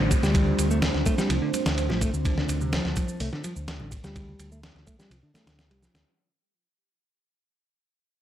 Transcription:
Already playing: A3 C4 D4 F4 C5, downlifter
0.00 A1
0.11 kick, ride, high bongo, shaker
0.23 D2 G3, snare, shaker
0.34 kick, ride, high conga, shaker
0.47 low conga
0.59 D2, ride, shaker
0.71 A3, high conga, shaker
0.82 snare, ride, shaker
0.94 D2, snare
1.06 A3, kick, ride, high conga, shaker
1.18 G3, snare, shaker
1.30 C2 F3, ride, shaker
1.42 D3
1.53 ride, high conga, shaker
1.66 D2, snare, shaker
1.78 ride, shaker
1.89 A1 F3, snare, high bongo, high conga
2.01 A3, kick, ride, high bongo, shaker
2.14 D2, shaker
2.25 D3, kick, ride, high conga, shaker
2.37 D3, snare, high bongo, low conga
2.49 D2, ride, shaker
2.61 C3, high conga, shaker
2.73 F3, snare, ride, shaker
2.85 D2, snare
2.96 kick, ride, high conga, shaker
3.08 shaker
3.20 C2 A3, open hi-hat, shaker
3.33 D3, snare
3.44 F3, ride, high conga, shaker
3.56 D2, shaker
3.68 snare, ride, shaker
3.80 A1 D3, high conga
3.91 kick, ride, high bongo, shaker
4.04 D2 G3, snare, shaker
4.16 kick, ride, high conga, shaker
4.29 low conga
4.39 D2, ride, shaker
4.52 A3, high conga, shaker
4.63 snare, ride, shaker
4.75 D2, snare
4.87 A3, kick, ride, high conga, shaker
4.99 G3, snare, shaker
5.11 C2 F3, ride, shaker
5.23 D3
5.34 A3, snare, ride, high conga, low conga, shaker
5.46 D2 D3, snare, shaker
5.59 snare, shaker
5.70 C2 G3, ride, high bongo, high conga
5.82 F3, snare, high bongo, shaker
5.94 D2, snare, shaker

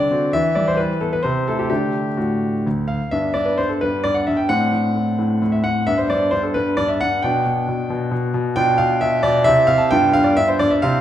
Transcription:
Already playing: D3 D5
0.11 C4 F#4
0.33 E3 E5
0.55 G3 D5
0.68 C5
0.77 E4 B4
1.01 B3 A4
1.13 B4
1.23 C3 C5
1.48 A3 E4 A4
1.59 G4
1.70 D3 A3 D4 G4
2.17 A2 F#4
2.67 D2
2.88 F5
3.11 G2 B3 D4 E5
3.34 G2 D5
3.46 B4
3.58 G2 C5
3.69 A4
3.81 G2 B4
4.04 G2 D5
4.14 F#5
4.27 G2 E5
4.37 G5
4.49 A2 C4 D4 F#5
4.73 A2
4.96 A2
5.19 A2
5.42 A2
5.52 E5
5.64 A2 F#5
5.87 G2 B3 D4 E5
5.98 C5
6.10 G2 D5
6.31 G2 C5
6.43 A4
6.54 G2 B4
6.77 G2 D5
6.88 E5
7.01 G2 F#5
7.23 B2 B3 D4 G5
7.46 B2
7.69 B2
7.90 B2
8.11 B2
8.34 B2
8.56 B2 D4 F4 G5
8.78 B2 F5
9.01 B2 E5
9.23 B2 D5
9.44 C3 C4 E4 E5
9.67 C3 F5
9.78 A5
9.91 G2 B3 F4 G5
10.13 G2 F5
10.24 D5
10.37 G2 E5
10.48 C5
10.59 G2 D5
10.70 E5
10.82 C3 C4 E4 F5

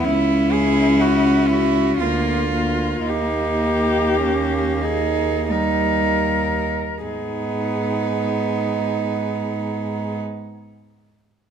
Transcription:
0.04 C#2 C#4 E4
0.52 G#4
1.01 F#4
1.48 E4
1.53 F#4
2.00 D2 A#3 F4
2.05 F4
2.55 A#3
3.05 D#2 D#4 G4
4.17 C#4
4.81 D#4 G#4
5.50 G3 D#4 A#4
7.03 G#2 B3 D#4 G#4

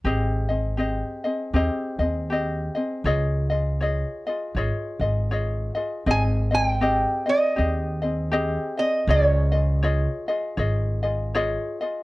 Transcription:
0.04 G#1 C4 G4 G#4 D#5
0.48 C4 G#4 D#5
0.77 C4 G4 G#4 D#5
1.24 C4 G#4 D#5
1.54 D#2 C4 G4 G#4 D#5
1.99 D#2 C4 G#4 D#5
2.30 C4 G4 G#4 D#5
2.75 C4 G#4 D#5
3.04 C#2 F4 G#4 C#5 D#5
3.50 F4 G#4 D#5
3.81 F4 G#4 C#5 D#5
4.26 F4 G#4 D#5
4.54 G#1 F4 G#4 C#5 D#5
4.99 G#1 F4 G#4 D#5
5.31 F4 G#4 C#5 D#5
5.75 F4 G#4 D#5
6.06 G#1 C4 G#4 D#5
6.11 G#5
6.51 C4 G#4 D#5 G#5
6.66 G5
6.81 C4 G4 G#4 D#5
7.26 C4 G#4 D#5
7.56 D#2 C4 G4 G#4 D#5
8.02 C4 G#4 D#5
8.31 C4 G4 G#4 D#5
8.77 C4 G#4 D#5
9.07 C#2 F4 G#4 C#5 D#5
9.52 F4 G#4 D#5
9.83 F4 G#4 C#5 D#5
10.28 F4 G#4 D#5
10.57 G#1 F4 G#4 C#5 D#5
11.03 F4 G#4 D#5
11.34 F4 G#4 C#5 D#5
11.81 F4 G#4 D#5

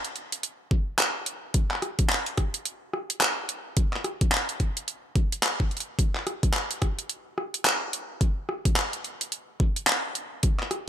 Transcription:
0.05 closed hi-hat
0.16 closed hi-hat
0.32 closed hi-hat
0.43 closed hi-hat
0.71 kick
0.99 clap, closed hi-hat
1.26 closed hi-hat
1.54 kick, closed hi-hat
1.71 clap
1.82 cross-stick, closed hi-hat
1.99 kick, closed hi-hat
2.10 clap
2.26 closed hi-hat
2.37 kick, cross-stick, closed hi-hat
2.54 closed hi-hat
2.65 closed hi-hat
2.93 cross-stick
3.10 closed hi-hat
3.21 clap, closed hi-hat
3.49 closed hi-hat
3.77 kick, closed hi-hat
3.93 clap
4.04 cross-stick, closed hi-hat
4.21 kick, closed hi-hat
4.32 clap
4.49 closed hi-hat
4.60 kick, closed hi-hat
4.77 closed hi-hat
4.88 closed hi-hat
5.16 kick, closed hi-hat
5.32 closed hi-hat
5.43 clap, closed hi-hat
5.60 kick
5.71 closed hi-hat
5.77 closed hi-hat
5.80 closed hi-hat
5.99 kick, closed hi-hat
6.16 clap
6.27 cross-stick, closed hi-hat
6.43 kick, closed hi-hat
6.54 clap
6.71 closed hi-hat
6.82 kick, cross-stick, closed hi-hat
6.99 closed hi-hat
7.09 closed hi-hat
7.38 cross-stick
7.54 closed hi-hat
7.65 clap, closed hi-hat
7.93 closed hi-hat
8.21 kick, closed hi-hat
8.49 cross-stick
8.65 kick, closed hi-hat
8.76 clap
8.93 closed hi-hat
9.04 closed hi-hat
9.21 closed hi-hat
9.32 closed hi-hat
9.60 kick
9.76 closed hi-hat
9.87 clap, closed hi-hat
10.15 closed hi-hat
10.43 kick, closed hi-hat
10.60 clap
10.71 cross-stick, closed hi-hat

